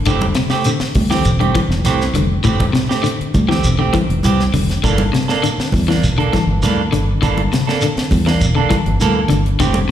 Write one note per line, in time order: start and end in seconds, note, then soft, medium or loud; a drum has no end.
0.05 0.31 F1 medium
0.05 0.31 D3 loud
0.05 0.24 E3 medium
0.05 0.25 A3 medium
0.05 0.25 C4 medium
0.05 0.25 G4 medium
0.05 kick loud
0.05 closed hi-hat medium
0.05 shekere medium
0.21 closed hi-hat soft
0.21 high conga medium
0.35 0.61 C3 medium
0.35 snare medium
0.35 closed hi-hat medium
0.35 shekere soft
0.50 0.69 A3 soft
0.50 0.69 C4 soft
0.50 0.69 G4 medium
0.50 snare medium
0.64 0.91 D3 medium
0.64 closed hi-hat medium
0.64 shekere medium
0.80 muted fingered electric bass stroke soft
0.80 snare medium
0.95 1.27 D2 loud
0.95 kick medium
0.95 open hi-hat medium
0.95 high conga medium
0.95 low conga medium
0.95 shekere soft
1.10 1.35 E3 medium
1.10 1.29 A3 soft
1.10 1.29 C4 soft
1.10 1.29 G4 medium
1.10 snare medium
1.25 1.49 E1 medium
1.25 kick medium
1.25 closed hi-hat medium
1.25 shekere medium
1.40 1.53 D3 medium
1.40 1.59 A3 soft
1.40 1.59 C4 soft
1.40 1.58 G4 medium
1.40 closed hi-hat soft
1.40 high conga medium
1.55 1.79 E3 medium
1.55 kick medium
1.55 closed hi-hat soft
1.55 high conga loud
1.55 shekere soft
1.69 1.81 F1 medium
1.69 snare soft
1.84 2.09 C2 medium
1.84 2.03 E3 medium
1.84 2.04 A3 medium
1.84 2.04 C4 medium
1.84 2.04 G4 medium
1.84 snare soft
1.84 closed hi-hat medium
1.84 high conga medium
1.84 shekere medium
2.01 snare soft
2.14 2.38 F1 medium
2.14 2.39 D3 medium
2.14 closed hi-hat medium
2.14 high conga medium
2.14 low conga medium
2.14 shekere soft
2.44 2.69 F1 medium
2.44 2.69 A2 medium
2.44 2.63 E3 medium
2.44 2.63 A3 medium
2.44 2.63 C4 medium
2.44 2.63 G4 medium
2.44 kick medium
2.44 closed hi-hat medium
2.44 shekere medium
2.60 kick medium
2.60 closed hi-hat soft
2.60 high conga loud
2.60 low conga medium
2.73 2.98 C3 medium
2.73 snare medium
2.73 closed hi-hat medium
2.73 shekere soft
2.89 3.08 A3 soft
2.89 3.08 C4 soft
2.89 3.07 G4 medium
2.89 snare medium
3.03 3.28 D3 medium
3.03 closed hi-hat medium
3.03 shekere medium
3.21 muted fingered electric bass stroke soft
3.21 closed hi-hat soft
3.34 3.66 D2 medium
3.34 kick medium
3.34 closed hi-hat medium
3.34 high conga medium
3.34 low conga medium
3.34 shekere soft
3.48 3.73 E3 medium
3.48 3.67 A3 soft
3.48 3.67 C4 soft
3.48 3.67 G4 medium
3.48 snare medium
3.64 3.88 E1 medium
3.64 kick medium
3.64 closed hi-hat medium
3.64 shekere medium
3.79 3.91 D3 medium
3.79 3.97 A3 soft
3.79 3.97 C4 medium
3.79 3.97 G4 medium
3.93 4.18 E3 medium
3.93 kick medium
3.93 closed hi-hat soft
3.93 high conga medium
3.93 shekere soft
4.09 4.21 F1 medium
4.09 closed hi-hat soft
4.23 4.48 C2 medium
4.23 4.42 E3 medium
4.23 4.42 C4 medium
4.23 4.42 G4 medium
4.23 muted clean electric guitar stroke medium
4.23 closed hi-hat medium
4.23 high conga medium
4.23 shekere medium
4.40 snare soft
4.53 4.77 F1 medium
4.53 4.78 D3 medium
4.53 open hi-hat medium
4.53 high conga medium
4.53 low conga medium
4.53 shekere soft
4.70 snare soft
4.70 closed hi-hat soft
4.83 5.07 G1 medium
4.83 5.08 D3 medium
4.83 5.02 E3 medium
4.83 5.02 A#3 medium
4.83 5.02 D4 medium
4.83 5.02 A4 medium
4.83 kick medium
4.83 closed hi-hat medium
4.83 shekere medium
4.98 closed hi-hat soft
4.98 high conga medium
5.13 5.37 C3 medium
5.13 snare medium
5.13 closed hi-hat soft
5.13 shekere soft
5.28 5.47 A#3 medium
5.28 5.47 D4 medium
5.28 5.46 A4 soft
5.28 snare medium
5.43 5.67 D3 medium
5.43 closed hi-hat medium
5.43 shekere medium
5.58 muted fingered electric bass stroke soft
5.58 snare medium
5.72 6.05 E2 loud
5.72 kick medium
5.72 open hi-hat medium
5.72 high conga medium
5.72 low conga medium
5.72 shekere soft
5.88 6.12 E3 medium
5.88 6.06 A#3 soft
5.88 6.06 D4 medium
5.88 muted clean electric guitar stroke medium
5.88 snare medium
6.04 6.27 E1 medium
6.04 kick medium
6.04 closed hi-hat medium
6.04 shekere medium
6.18 6.30 D3 medium
6.18 6.36 A#3 soft
6.18 6.36 D4 medium
6.18 6.36 A4 medium
6.18 closed hi-hat soft
6.33 6.57 E3 medium
6.33 kick medium
6.33 snare soft
6.33 closed hi-hat soft
6.33 high conga medium
6.33 shekere soft
6.47 6.59 G1 medium
6.62 6.86 D2 medium
6.62 6.80 E3 medium
6.62 6.81 A#3 medium
6.62 6.81 D4 medium
6.62 6.81 A4 medium
6.62 snare soft
6.62 closed hi-hat medium
6.62 high conga medium
6.62 shekere medium
6.92 7.17 G1 medium
6.92 7.17 D3 medium
6.92 closed hi-hat medium
6.92 low conga medium
6.92 shekere soft
7.22 7.46 G1 medium
7.22 7.46 D3 medium
7.22 7.40 E3 medium
7.22 7.40 A#3 medium
7.22 7.41 D4 medium
7.22 7.41 A4 medium
7.22 kick medium
7.22 closed hi-hat medium
7.22 shekere medium
7.37 closed hi-hat soft
7.37 high conga medium
7.52 7.77 C3 medium
7.52 snare medium
7.52 closed hi-hat medium
7.52 shekere soft
7.67 7.86 A#3 soft
7.67 7.85 D4 medium
7.67 7.85 A4 medium
7.67 snare medium
7.81 8.06 D3 medium
7.81 closed hi-hat medium
7.81 shekere medium
7.97 muted fingered electric bass stroke soft
7.97 snare medium
7.97 closed hi-hat soft
8.11 8.43 E2 medium
8.11 kick medium
8.11 open hi-hat medium
8.11 high conga medium
8.11 low conga medium
8.11 shekere soft
8.26 8.50 E3 medium
8.26 8.45 A#3 soft
8.26 8.44 D4 soft
8.26 muted clean electric guitar stroke medium
8.26 snare medium
8.41 8.65 E1 medium
8.41 kick medium
8.41 closed hi-hat medium
8.41 shekere medium
8.55 8.68 D3 medium
8.55 8.75 A#3 soft
8.55 8.75 D4 medium
8.55 8.74 A4 medium
8.70 8.94 E3 medium
8.70 kick medium
8.70 closed hi-hat soft
8.70 high conga loud
8.70 shekere soft
8.86 8.98 G1 medium
8.86 closed hi-hat soft
9.00 9.24 D2 medium
9.00 9.19 E3 medium
9.00 9.19 A#3 medium
9.00 9.19 A4 medium
9.00 closed hi-hat medium
9.00 high conga medium
9.00 shekere medium
9.28 9.55 G1 medium
9.28 9.54 D3 medium
9.28 closed hi-hat medium
9.28 low conga medium
9.28 shekere soft
9.46 closed hi-hat soft
9.59 9.84 F1 loud
9.59 9.84 D3 medium
9.59 9.78 E3 medium
9.59 9.78 A3 medium
9.59 9.78 C4 medium
9.59 9.78 G4 medium
9.59 kick medium
9.59 closed hi-hat medium
9.59 shekere medium
9.74 closed hi-hat soft
9.74 high conga loud